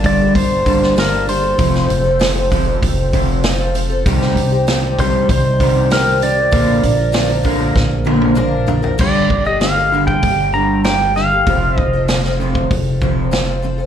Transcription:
Already playing: G1 G3 A#3 D4 A5
0.04 G2 D3 G3 A#3 D4 D5, kick, open hi-hat
0.08 A4
0.20 G3 A#3 D4 A4
0.35 G1 G2 D3 C5, kick, open hi-hat
0.65 G2 D3 G3 A#3 D4 A4, kick, open hi-hat
0.83 snare
0.96 G2 D3 G3 A#3 D4 A#4, snare, open hi-hat
1.27 G2 D3 G3 A#3 D4 A4 C5, open hi-hat
1.43 G3 A#3 D4 A4
1.57 F1 F2 C3 F3 C4 F4 A4 C5, kick, open hi-hat
1.75 snare
1.89 F1 F2 C3, open hi-hat
2.04 C4 F4 A4
2.19 F2 C3 F3 C4 F4 A4, snare, open hi-hat
2.35 C4 F4 A4
2.50 F2 C3 F3 C4 F4 A4, kick, open hi-hat
2.66 C4 F4 A4
2.82 F1 F2 C3, kick, open hi-hat
3.12 F2 C3 F3 C4 F4 A4, kick, open hi-hat
3.43 F2 C3 F3 C4 F4 A4, snare, open hi-hat
3.74 F2 C3 F3 C4 F4 A4, open hi-hat
3.90 C4 F4 A4
4.05 C2 C3 D#3 G3 C4 D#4 G4, kick, open hi-hat
4.22 snare
4.35 C2 C3 D#3, open hi-hat
4.52 C4 D#4 G4
4.67 C3 D#3 G3 C4 D#4 G4, snare, open hi-hat
4.98 C3 D#3 G3 C4 D#4 G4 C5, kick, open hi-hat
5.29 C2 C3 D#3 C5, kick, open hi-hat
5.60 C3 D#3 G3 C4 D#4 G4, kick, open hi-hat
5.90 C3 D#3 G3 C4 D#4 G4 A#4, snare, open hi-hat
6.20 C3 D#3 G3 C4 D#4 G4 D5, open hi-hat
6.36 C4 D#4 G4
6.51 A#1 A#2 D3 F3 A#3 D4 A#4, kick, open hi-hat
6.83 A#1 A#2 D3, open hi-hat
6.97 F3 A#3 D4 A#4
7.12 A#2 D3 F3 A#3 D4 A#4, snare, open hi-hat
7.27 F3 A#3 D4 A#4
7.42 A#2 D3 F3 A#3 D4 A#4, kick, open hi-hat
7.46 A#3
7.59 F3 A#3 D4 A#4
7.76 A#1 A#2 D3, kick, snare
8.05 A#2 D3 F3 A#3 D4 A#4, high tom
8.22 high tom
8.35 A#2 D3 F3 A#3 D4 A#4, mid tom
8.67 A#2 D3 F3 A#3 D4 A#4, floor tom
8.82 F3 A#3 D4 A#4, floor tom
8.98 G1 G2 D3 G3 A#3 G4 A4 D5, kick, crash
9.30 G1 G2 D3, kick
9.45 G3 A#3 G4 A4 D#5
9.60 G2 D3 G3 A#3 G4 A4 F5, snare, open hi-hat
9.76 G3 A#3 G4 A4
9.92 G2 D3 G3 A#3 G4 A4
10.07 G3 A#3 G4 A4 G5, kick
10.22 G1 G2 D3, kick, open hi-hat
10.53 G2 D3 G3 A#3 G4 A#5
10.84 G2 D3 G3 A#3 G4 A4 G5, snare, open hi-hat
11.15 G2 D3 G3 A#3 G4 A4 F5, snare
11.31 G3 A#3 G4 A4
11.46 F1 F2 C3 F3 C4 F4 A4, kick, open hi-hat
11.78 F1 F2 C3 D#5, kick
11.93 C4 F4 A4
12.08 F2 C3 F3 C4 F4 A4, snare, open hi-hat
12.24 C4 F4 A4, snare
12.39 F2 C3 F3 C4 F4 A4
12.54 C4 F4 A4, kick
12.71 F1 F2 C3, kick, open hi-hat
13.01 F2 C3 F3 C4 F4 A4, kick
13.31 F2 C3 F3 C4 F4 A4, snare, open hi-hat
13.62 F2 C3 F3 C4 F4 A4
13.78 C4 F4 A4

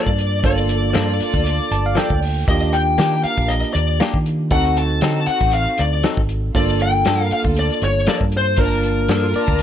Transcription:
Already playing: A#3 D4 F4 A#4 D5
0.06 G2, kick
0.18 closed hi-hat
0.42 G1 A#3 D4 F4 A4 D5, kick, closed hi-hat
0.58 closed hi-hat
0.69 closed hi-hat
0.93 G2 F3 A#3 D4 A4, snare, closed hi-hat
1.06 F4 A4
1.19 A#3 F4 A4, muted fingered electric bass stroke, closed hi-hat
1.34 D2, kick, closed hi-hat
1.46 closed hi-hat
1.71 G1 A5, closed hi-hat
1.86 F5
1.95 F3 A#3 D4 A4 G5, snare, closed hi-hat
2.10 D2, kick
2.23 open hi-hat
2.45 D#2 A#3 D4 G4 D#5, kick, closed hi-hat
2.49 A#3 D4 F4 G4
2.62 closed hi-hat
2.73 G5, closed hi-hat
2.98 D#3 A#3 D4 G4, snare, closed hi-hat
3.12 D#4 G4
3.24 D4 A#4 F5, muted fingered electric bass stroke, closed hi-hat
3.37 A#1, kick
3.48 D#5, closed hi-hat
3.63 closed hi-hat
3.74 D#2 D5, closed hi-hat
4.00 A#3 D4 G4, snare, closed hi-hat
4.14 D#3, kick
4.26 closed hi-hat
4.51 D2 C4 D#4 F#4 A4 F#5, kick, closed hi-hat
4.65 closed hi-hat
4.77 A5, closed hi-hat
5.01 D3 F#3 C4 D#4 A4, snare, closed hi-hat
5.16 D#4 F#4
5.26 C4 D#4 F#4 F#5, muted fingered electric bass stroke, closed hi-hat
5.40 A1, kick, closed hi-hat
5.51 F5, closed hi-hat
5.78 D2 D5, closed hi-hat
6.03 F#3 C4 D#4 A4, snare, closed hi-hat
6.17 G#1, kick
6.29 closed hi-hat
6.54 G1 A#3 D4 F4 A4 D5, kick, closed hi-hat
6.69 closed hi-hat
6.80 G5, closed hi-hat
7.05 G2 F3 A#3 D4 A4, snare, closed hi-hat
7.20 F4 A#4
7.31 A#3 F4 A4 F5, muted fingered electric bass stroke, closed hi-hat
7.44 D2, kick
7.56 D5, closed hi-hat
7.70 closed hi-hat
7.82 G1 C#5, closed hi-hat
8.07 F3 A#3 D4 A4 D5, snare, closed hi-hat
8.21 G2, kick
8.32 closed hi-hat
8.37 C5
8.57 G1 A#3 D4 F4 A#4 A5, kick, closed hi-hat
8.71 closed hi-hat
8.83 closed hi-hat
9.08 G2 F3 A#3 D4 A4, snare, closed hi-hat
9.22 F4 A4
9.33 A#3 F4 D5 A5, muted fingered electric bass stroke, closed hi-hat
9.47 D2, kick, closed hi-hat
9.59 closed hi-hat

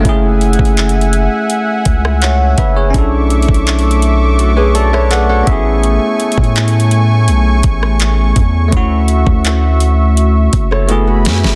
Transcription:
0.00 A3 C#4
0.05 F#1 E4 E5 F#5 G#5, kick, closed hi-hat
0.09 G#4
0.41 closed hi-hat
0.53 closed hi-hat
0.59 F#1, kick
0.65 closed hi-hat
0.77 clap, closed hi-hat
0.89 closed hi-hat
1.01 closed hi-hat
1.13 closed hi-hat
1.50 closed hi-hat
1.85 C#2, kick, closed hi-hat
2.05 cross-stick
2.22 C#5 F#5, clap, closed hi-hat
2.58 F#1 B4 E5, kick, closed hi-hat
2.76 G#4 C#5
2.90 B1 A3 C#4 D4 D6, kick
2.94 E4 E5 C#6, closed hi-hat
2.99 A4
3.30 closed hi-hat
3.42 closed hi-hat
3.49 B1, kick
3.54 closed hi-hat
3.67 clap, closed hi-hat
3.79 closed hi-hat
3.91 closed hi-hat
4.02 closed hi-hat
4.39 F#4 A4, closed hi-hat
4.57 G#4 B4 C#5
4.75 F#4 A4 D5 A5, closed hi-hat
4.93 A4 B4 C#5 E5, cross-stick
5.11 G#4 A4 B4 D5 F#5, clap, closed hi-hat
5.29 F#4 G#4 A4 C#5 F#5
5.43 B3 C#4 G#5, closed hi-hat
5.47 A1 E4 E5, kick
5.52 G#4
5.83 closed hi-hat
6.20 closed hi-hat
6.32 closed hi-hat
6.38 A2, kick
6.44 closed hi-hat
6.56 clap, closed hi-hat
6.68 closed hi-hat
6.80 closed hi-hat
6.91 closed hi-hat
7.28 B1, closed hi-hat
7.63 A1, kick, closed hi-hat
7.83 cross-stick
8.00 clap, closed hi-hat
8.36 E2, kick, closed hi-hat
8.68 A3 C#4 F#4 E5
8.72 D2 E4, kick, closed hi-hat
8.77 F#4
9.08 closed hi-hat
9.27 D2, kick
9.45 clap, closed hi-hat
9.80 closed hi-hat
10.17 closed hi-hat
10.53 F#1, kick, closed hi-hat
10.71 A4 C#5, cross-stick
10.87 A3 B3 E4 F#4 A4 G#5 B5, closed hi-hat
10.92 G#4
11.07 F#4
11.25 F#2, snare, closed hi-hat
11.44 F#1, snare

